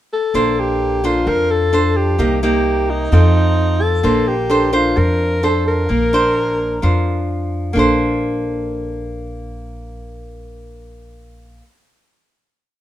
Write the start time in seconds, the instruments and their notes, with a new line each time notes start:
0.13 alto saxophone A4
0.34 upright bass A#1, nylon-string guitar A#3 D4 A4 C5
0.59 alto saxophone G4
1.04 nylon-string guitar D4 A4 C5, alto saxophone F4
1.27 upright bass F2, nylon-string guitar F3, alto saxophone A#4
1.51 alto saxophone A4
1.73 nylon-string guitar D4 A4 C5
1.96 alto saxophone G4
2.18 upright bass C2, nylon-string guitar C3 A#3 D#4 G4
2.43 nylon-string guitar A#3 D#4 G4, alto saxophone G4
2.90 alto saxophone D#4
3.12 upright bass F2, nylon-string guitar F3 C4 D#4 A4
3.82 alto saxophone A4
4.03 upright bass A#1, nylon-string guitar A#3 D4 A4 C5
4.28 alto saxophone G4
4.50 nylon-string guitar D4 A4 C5
4.73 nylon-string guitar D4 C5, alto saxophone F4
4.96 upright bass F2, nylon-string guitar F3, alto saxophone A#4
5.43 nylon-string guitar D4 A4 C5, alto saxophone A4
5.67 alto saxophone A#4
5.89 upright bass A#1, nylon-string guitar A#3
6.13 nylon-string guitar D4 C5
6.82 upright bass F2, nylon-string guitar F3 D4 C5
7.73 upright bass A#1, nylon-string guitar A#3 D4 A4
7.79 nylon-string guitar C5